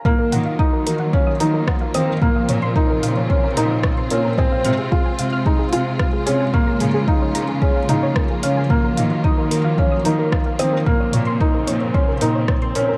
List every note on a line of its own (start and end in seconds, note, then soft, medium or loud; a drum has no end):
0.05 2.19 D#3 medium
0.05 4.34 F3 medium
0.05 2.19 F#3 medium
0.05 4.34 A#3 medium
0.05 0.40 A#3 medium
0.05 12.97 F4 medium
0.05 0.11 A#4 medium
0.05 kick loud
0.05 mid tom medium
0.19 0.28 A#4 medium
0.32 0.51 D#3 medium
0.32 0.38 F#5 medium
0.32 closed hi-hat medium
0.32 mid tom medium
0.46 0.52 F5 medium
0.59 0.93 D#4 medium
0.59 0.65 D#6 loud
0.59 kick loud
0.73 0.79 A#4 medium
0.86 1.05 D#3 medium
0.86 0.96 A#4 loud
0.86 closed hi-hat medium
1.00 1.06 F#5 medium
1.13 1.30 C#4 medium
1.13 1.19 F5 medium
1.13 kick loud
1.27 1.33 D#6 medium
1.40 1.59 D#3 medium
1.40 1.75 D#4 medium
1.40 1.46 A#4 medium
1.40 closed hi-hat medium
1.54 1.63 A#4 loud
1.67 1.74 F#5 medium
1.67 kick loud
1.67 cross-stick medium
1.81 1.87 F5 medium
1.94 2.14 D#3 medium
1.94 2.12 C4 medium
1.94 2.01 D#6 loud
1.94 closed hi-hat medium
2.09 2.14 A#4 medium
2.22 4.36 C#3 medium
2.22 2.56 A#3 medium
2.22 6.50 C4 medium
2.22 2.31 A#4 loud
2.22 kick loud
2.22 mid tom medium
2.36 2.41 F5 medium
2.49 2.68 A#2 loud
2.49 2.55 C#5 medium
2.49 closed hi-hat medium
2.49 mid tom medium
2.62 2.68 C6 loud
2.76 3.10 D#4 medium
2.76 2.82 A#4 medium
2.76 kick loud
2.89 2.98 A#4 loud
3.03 3.22 A#2 medium
3.03 3.09 F5 medium
3.03 closed hi-hat medium
3.17 3.23 C#5 medium
3.30 3.47 C#4 medium
3.30 3.36 C6 loud
3.30 kick loud
3.44 3.50 A#4 medium
3.57 3.76 A#2 medium
3.57 3.91 D#4 medium
3.57 3.66 A#4 loud
3.57 closed hi-hat medium
3.71 3.77 F5 medium
3.83 3.90 C#5 medium
3.83 kick loud
3.83 cross-stick medium
3.98 4.04 C6 loud
4.10 4.30 A#2 medium
4.10 4.28 C#4 medium
4.10 4.17 A#4 medium
4.10 closed hi-hat medium
4.25 4.34 A#4 loud
4.38 8.66 G#3 medium
4.38 4.72 C4 medium
4.38 4.44 G#5 medium
4.38 kick loud
4.38 mid tom medium
4.52 4.58 F5 medium
4.65 4.84 C3 loud
4.65 4.71 F6 loud
4.65 closed hi-hat medium
4.65 mid tom medium
4.78 4.84 G#4 medium
4.92 5.26 F4 medium
4.92 5.01 G#4 loud
4.92 kick loud
5.06 5.12 G#5 medium
5.19 5.38 C3 medium
5.19 5.25 F5 medium
5.19 closed hi-hat medium
5.33 5.39 F6 loud
5.46 5.63 D#4 medium
5.46 5.52 G#4 medium
5.46 kick loud
5.59 5.68 G#4 loud
5.72 5.92 C3 medium
5.72 6.07 F4 medium
5.72 5.79 G#5 medium
5.72 closed hi-hat medium
5.86 5.92 F5 medium
5.99 6.06 F6 medium
5.99 kick loud
5.99 cross-stick medium
6.13 6.19 G#4 medium
6.26 6.46 C3 medium
6.26 6.44 C#4 medium
6.26 6.36 G#4 loud
6.26 closed hi-hat medium
6.40 6.47 G#5 medium
6.53 8.68 C#3 medium
6.53 12.97 F3 medium
6.53 6.88 A#3 loud
6.53 12.97 A#3 medium
6.53 6.60 C#5 medium
6.53 kick loud
6.53 mid tom medium
6.67 6.74 A#5 medium
6.80 7.00 C#3 loud
6.80 6.87 G#4 medium
6.80 closed hi-hat medium
6.80 mid tom medium
6.94 7.03 G#4 loud
7.08 7.42 D#4 medium
7.08 7.14 F5 medium
7.08 kick loud
7.22 7.28 C#5 medium
7.35 7.54 C#3 medium
7.35 7.41 A#5 loud
7.35 closed hi-hat medium
7.49 7.55 G#4 medium
7.62 7.79 C#4 medium
7.62 7.71 G#4 loud
7.62 kick loud
7.76 7.82 F5 medium
7.89 8.08 C#3 medium
7.89 8.23 D#4 medium
7.89 7.93 F5 medium
7.89 closed hi-hat medium
7.89 mid tom medium
8.03 8.12 C#5 loud
8.16 8.20 A#4 medium
8.16 kick loud
8.16 cross-stick medium
8.30 8.34 G#4 medium
8.43 8.62 C#3 medium
8.43 8.60 C#4 medium
8.43 8.49 F5 loud
8.43 closed hi-hat medium
8.57 8.63 G#5 medium
8.70 10.84 D#3 medium
8.70 10.84 F#3 medium
8.70 9.04 A#3 medium
8.70 8.76 A#4 medium
8.70 kick loud
8.70 mid tom medium
8.84 8.93 A#4 medium
8.97 9.16 D#3 loud
8.97 9.06 F5 medium
8.97 closed hi-hat medium
8.97 mid tom medium
9.11 9.17 F5 medium
9.24 9.58 D#4 medium
9.24 9.30 D#6 loud
9.24 kick loud
9.38 9.44 A#4 medium
9.51 9.70 D#3 medium
9.51 9.60 A#4 loud
9.51 closed hi-hat medium
9.64 9.74 F5 medium
9.78 9.96 C#4 medium
9.78 9.84 F5 medium
9.78 kick medium
9.92 9.98 D#6 loud
10.05 10.24 D#3 medium
10.05 10.39 D#4 medium
10.05 10.12 A#4 medium
10.05 closed hi-hat medium
10.19 10.28 A#4 loud
10.32 10.42 F5 medium
10.32 kick loud
10.32 cross-stick medium
10.46 10.52 F5 medium
10.59 10.79 D#3 medium
10.59 10.76 C4 medium
10.59 10.66 D#6 loud
10.59 closed hi-hat medium
10.73 10.79 A#4 medium
10.86 12.97 C#3 medium
10.86 11.21 A#3 medium
10.86 12.97 C4 medium
10.86 10.95 A#4 loud
10.86 kick loud
10.86 mid tom medium
11.00 11.09 C#5 medium
11.13 11.32 A#2 loud
11.13 11.20 C#5 medium
11.13 closed hi-hat medium
11.13 mid tom medium
11.27 11.33 C6 loud
11.40 11.75 D#4 medium
11.40 11.47 A#4 medium
11.40 kick loud
11.54 11.63 A#4 loud
11.67 11.87 A#2 medium
11.67 11.77 C#5 medium
11.67 closed hi-hat medium
11.81 11.87 C#5 medium
11.94 12.11 C#4 medium
11.94 12.01 C6 loud
11.94 kick loud
12.08 12.14 A#4 medium
12.21 12.41 A#2 medium
12.21 12.56 D#4 medium
12.21 12.31 A#4 loud
12.21 closed hi-hat medium
12.35 12.44 C#5 medium
12.48 12.55 C#5 medium
12.48 kick loud
12.48 cross-stick medium
12.62 12.68 C6 loud
12.75 12.95 A#2 medium
12.75 12.93 C#4 medium
12.75 12.82 A#4 medium
12.75 closed hi-hat medium
12.89 12.97 A#4 loud